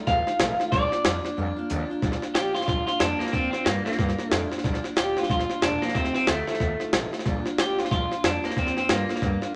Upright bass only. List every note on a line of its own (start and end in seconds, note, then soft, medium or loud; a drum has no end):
0.07 0.23 A1 loud
0.27 muted upright bass stroke medium
0.40 0.56 A1 loud
0.60 muted upright bass stroke medium
0.72 0.88 A#1 loud
1.05 1.21 F2 medium
1.25 muted upright bass stroke medium
1.38 1.54 F2 medium
1.58 muted upright bass stroke medium
1.71 1.86 D#2 loud
1.90 muted upright bass stroke medium
2.02 2.18 A#1 medium
2.22 muted upright bass stroke medium
2.35 2.51 D2 medium
2.55 2.65 G1 loud
2.68 2.84 A#1 medium
2.87 muted upright bass stroke medium
3.00 3.16 F2 loud
3.20 muted upright bass stroke medium
3.53 3.63 F2 medium
3.66 3.82 G2 medium
3.87 muted upright bass stroke medium
3.99 4.14 G2 medium
4.31 4.47 F2 medium
4.52 muted upright bass stroke medium
4.64 4.80 A#1 medium
4.84 muted upright bass stroke medium
4.97 5.13 D2 medium
5.16 5.27 G1 medium
5.29 5.45 A#1 medium
5.49 muted upright bass stroke medium
5.63 5.78 E1 loud
5.82 muted upright bass stroke medium
5.95 6.11 F1 medium
6.15 6.25 C2 medium
6.28 6.43 D2 medium
6.60 6.76 D#2 medium
6.93 7.09 A1 medium
7.12 muted upright bass stroke medium
7.26 7.42 A#1 medium
7.46 muted upright bass stroke medium
7.59 7.74 D2 medium
7.79 7.89 G1 loud
7.91 8.07 A#1 medium
8.12 muted upright bass stroke medium
8.25 8.40 F2 loud
8.44 muted upright bass stroke medium
8.77 8.87 F2 medium
8.90 9.05 G2 loud
9.09 muted upright bass stroke medium
9.22 9.38 G2 medium
9.42 muted upright bass stroke medium